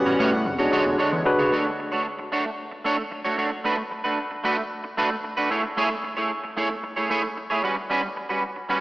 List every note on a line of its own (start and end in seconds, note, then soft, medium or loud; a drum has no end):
0.00 0.43 C#3 medium
0.00 0.45 G3 medium
0.00 0.45 B3 medium
0.00 0.32 C#4 medium
0.00 0.32 F#4 medium
0.00 0.32 G4 medium
0.00 0.33 B4 medium
0.00 1.50 F#5 medium
0.06 0.18 A1 loud
0.06 0.17 G3 medium
0.06 0.18 C#4 medium
0.06 0.19 F#4 medium
0.06 0.19 C#5 medium
0.19 0.48 A2 loud
0.19 0.36 G3 medium
0.19 0.32 C#4 medium
0.19 0.31 F#4 medium
0.19 0.32 C#5 loud
0.32 muted clean electric guitar stroke soft
0.45 0.68 E1 loud
0.45 1.51 D3 medium
0.45 1.51 G#3 medium
0.45 1.51 C#5 medium
0.45 muted clean electric guitar stroke soft
0.59 0.71 G#3 medium
0.59 0.99 D4 medium
0.59 0.71 D4 medium
0.59 0.72 F#4 medium
0.59 0.99 F#4 medium
0.59 0.99 G#4 medium
0.59 0.72 C#5 medium
0.59 0.99 C#5 medium
0.72 0.89 G#3 medium
0.72 0.85 D4 medium
0.72 0.85 F#4 loud
0.72 0.84 C#5 loud
0.85 0.97 E1 medium
0.85 muted clean electric guitar stroke soft
0.98 1.16 G#3 medium
0.98 1.12 D4 medium
0.98 1.11 F#4 medium
0.98 1.11 C#5 loud
1.12 1.24 E2 medium
1.12 muted clean electric guitar stroke medium
1.25 1.52 D4 loud
1.25 1.52 F#4 medium
1.25 1.52 G#4 medium
1.25 1.53 B4 loud
1.25 muted clean electric guitar stroke soft
1.39 1.50 C#2 medium
1.39 1.52 G#3 medium
1.39 1.51 D4 medium
1.39 1.52 F#4 medium
1.39 1.52 C#5 medium
1.52 1.69 A3 medium
1.52 1.66 D4 medium
1.52 1.65 F#4 medium
1.52 1.65 C#5 medium
1.66 muted clean electric guitar stroke soft
1.79 muted clean electric guitar stroke soft
1.92 2.06 A3 medium
1.92 2.06 D4 soft
1.92 2.05 F#4 medium
1.92 2.05 C#5 medium
2.19 muted clean electric guitar stroke soft
2.32 2.49 A3 medium
2.32 2.45 D4 medium
2.32 2.45 F#4 medium
2.32 2.44 C#5 medium
2.46 muted clean electric guitar stroke soft
2.71 muted clean electric guitar stroke soft
2.84 3.01 A3 medium
2.84 2.98 D4 medium
2.84 2.97 F#4 medium
2.84 2.97 C#5 medium
2.98 muted clean electric guitar stroke soft
3.11 muted clean electric guitar stroke soft
3.25 3.36 A3 medium
3.25 3.37 D4 medium
3.25 3.37 F#4 medium
3.25 3.38 C#5 medium
3.38 3.51 A3 medium
3.38 3.51 D4 medium
3.38 3.50 F#4 medium
3.38 3.50 C#5 medium
3.51 muted clean electric guitar stroke soft
3.64 3.81 A3 medium
3.64 3.77 D4 medium
3.64 3.77 F#4 medium
3.64 3.76 B4 medium
3.77 muted clean electric guitar stroke medium
3.91 muted clean electric guitar stroke soft
4.04 4.18 A3 soft
4.04 4.18 D4 medium
4.04 4.18 F#4 medium
4.04 4.17 B4 medium
4.31 muted clean electric guitar stroke soft
4.44 4.61 A3 medium
4.44 4.57 D4 medium
4.44 4.57 F#4 medium
4.44 4.56 B4 medium
4.58 muted clean electric guitar stroke soft
4.84 muted clean electric guitar stroke soft
4.97 5.14 A3 medium
4.97 5.11 D4 medium
4.97 5.10 F#4 medium
4.97 5.09 B4 medium
5.11 muted clean electric guitar stroke soft
5.24 muted clean electric guitar stroke soft
5.37 5.49 A3 medium
5.37 5.50 D4 medium
5.37 5.51 F#4 medium
5.37 5.51 B4 medium
5.50 5.64 A3 medium
5.50 5.63 E4 medium
5.50 5.63 G#4 medium
5.50 5.62 C#5 medium
5.64 muted clean electric guitar stroke soft
5.77 5.94 A3 medium
5.77 5.90 E4 medium
5.77 5.89 G#4 medium
5.77 5.89 C#5 loud
5.90 muted clean electric guitar stroke soft
6.04 muted clean electric guitar stroke soft
6.17 6.31 A3 soft
6.17 6.30 E4 medium
6.17 6.30 G#4 medium
6.17 6.30 C#5 medium
6.44 muted clean electric guitar stroke soft
6.57 6.73 A3 medium
6.57 6.70 E4 medium
6.57 6.69 G#4 medium
6.57 6.69 C#5 medium
6.70 muted clean electric guitar stroke soft
6.83 muted clean electric guitar stroke soft
6.96 7.09 A3 medium
6.96 7.09 E4 medium
6.96 7.10 G#4 medium
6.96 7.10 C#5 medium
7.10 7.27 A3 medium
7.10 7.23 E4 medium
7.10 7.23 G#4 medium
7.10 7.22 C#5 medium
7.23 muted clean electric guitar stroke soft
7.37 muted clean electric guitar stroke soft
7.50 7.63 A3 medium
7.50 7.63 E4 medium
7.50 7.64 G#4 medium
7.50 7.64 C#5 medium
7.63 7.76 G3 medium
7.63 7.76 C#4 medium
7.63 7.76 F#4 medium
7.63 7.75 B4 medium
7.76 muted clean electric guitar stroke soft
7.90 8.06 G3 medium
7.90 8.03 C#4 medium
7.90 8.02 F#4 medium
7.90 8.02 B4 medium
8.03 muted clean electric guitar stroke soft
8.16 muted clean electric guitar stroke soft
8.29 8.43 G3 soft
8.29 8.43 C#4 soft
8.29 8.43 F#4 medium
8.29 8.42 B4 medium
8.56 muted clean electric guitar stroke soft
8.69 8.80 G3 medium
8.69 8.80 C#4 medium
8.69 8.80 F#4 medium
8.69 8.80 B4 medium